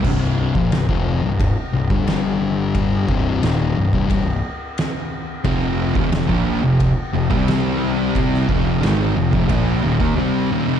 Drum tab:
CC |x---------------|----------------|----------------|----------------|
RD |----b---b---b---|b---b---b---b---|b---b---b---b---|b---b---b-------|
SD |-o--o-------o---|----o-------o---|----o-------o---|-o--o-----------|
BD |o--o-o--o--o----|o-o----oo-------|o--o-o--o--o----|o-o----oo--o----|